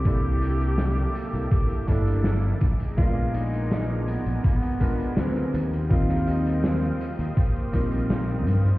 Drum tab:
HH |x-xxx-xxxxxxxxxx|x-xxx-xxxxxxxxxx|xxxxxxxxxxxxxxxx|
TB |x-xxx-xxx-xxx-xx|x-xxx-xxx-xxx-xx|x-xxx-xxx-xxx-xx|
SD |----o-------o---|----o-------o---|-o--o-------o---|
BD |o-------o-o---o-|o-------o-o-----|o-------o-o-----|